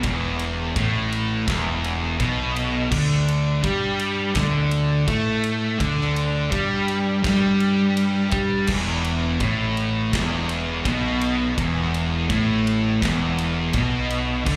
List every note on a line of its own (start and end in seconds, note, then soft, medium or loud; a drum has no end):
0.03 0.72 E1 medium
0.03 0.74 E2 loud
0.03 kick loud
0.03 ride loud
0.39 ride medium
0.75 1.44 A1 medium
0.75 1.46 A2 loud
0.75 kick loud
0.75 ride loud
1.12 ride medium
1.48 2.16 E1 medium
1.48 2.19 E2 loud
1.48 kick loud
1.48 snare loud
1.48 ride loud
1.84 ride medium
2.19 2.88 B1 medium
2.19 2.90 B2 loud
2.19 kick loud
2.19 ride loud
2.56 ride medium
2.91 3.60 D2 medium
2.91 3.62 D3 loud
2.91 kick loud
2.91 crash loud
3.11 snare soft
3.28 ride medium
3.62 4.32 G2 medium
3.62 4.34 G3 medium
3.62 kick loud
3.62 ride loud
3.99 ride medium
4.34 5.04 D2 medium
4.34 5.06 D3 loud
4.34 kick loud
4.34 snare loud
4.34 ride loud
4.71 ride medium
5.08 5.76 A2 medium
5.08 5.79 A3 loud
5.08 kick loud
5.08 ride loud
5.44 ride medium
5.79 6.48 D2 medium
5.79 6.50 D3 loud
5.79 kick loud
5.79 ride loud
6.01 snare soft
6.16 ride medium
6.50 7.20 G2 medium
6.50 7.22 G3 medium
6.50 kick loud
6.50 ride loud
6.88 ride medium
7.23 8.28 G2 medium
7.23 8.30 G3 loud
7.23 kick loud
7.23 snare loud
7.23 ride loud
7.60 ride medium
7.97 ride loud
8.31 8.66 G2 medium
8.31 8.66 G3 loud
8.31 kick loud
8.31 ride medium
8.67 9.36 E1 loud
8.67 9.39 E2 loud
8.67 kick loud
8.67 crash loud
8.88 snare soft
9.04 ride medium
9.40 10.09 A1 medium
9.40 10.11 A2 loud
9.40 kick loud
9.40 ride loud
9.77 ride medium
10.13 10.81 E1 medium
10.13 10.84 E2 loud
10.13 kick loud
10.13 snare loud
10.13 ride loud
10.49 ride medium
10.84 11.53 B1 loud
10.84 11.55 B2 loud
10.84 kick loud
10.84 ride loud
11.21 ride medium
11.58 12.26 E1 medium
11.58 12.28 E2 loud
11.58 kick loud
11.58 ride loud
11.94 ride medium
12.29 12.98 A1 medium
12.29 13.00 A2 medium
12.29 kick loud
12.29 ride loud
12.67 ride medium
13.02 13.70 E1 medium
13.02 13.73 E2 loud
13.02 kick loud
13.02 snare loud
13.02 ride loud
13.38 ride medium
13.73 14.42 B1 loud
13.73 14.45 B2 loud
13.73 kick loud
13.73 ride loud
14.10 ride medium
14.46 14.56 D2 medium
14.46 14.56 D3 loud
14.46 kick loud
14.46 crash loud